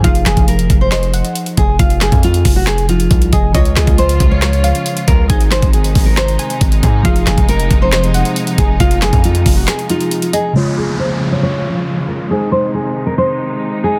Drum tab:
HH |xxxxxxx-xxxxxxx-|xxxxxxo-xxxxxxx-|xxxxxxx-xxxxxxx-|xxxxxxo-xxxxxxx-|
CP |--x-----x-------|--x-----x-------|--x-----x-------|--x-----x-------|
SD |--o-----o-------|--o-----o-------|--o-----o-------|--o-----o-------|
BD |o--o--o-------o-|o--o--o-----o-o-|o--o--o-------o-|o--o--o-----o-o-|

HH |xxxxxxx-xxxxxxx-|xxxxxxo-xxxxxxx-|----------------|----------------|
CP |--x-----x-------|--x-----x-------|----------------|----------------|
SD |--o-----o-------|--o-----o-------|----------------|----------------|
BD |o--o--o-------o-|o--o--o---------|----------------|----------------|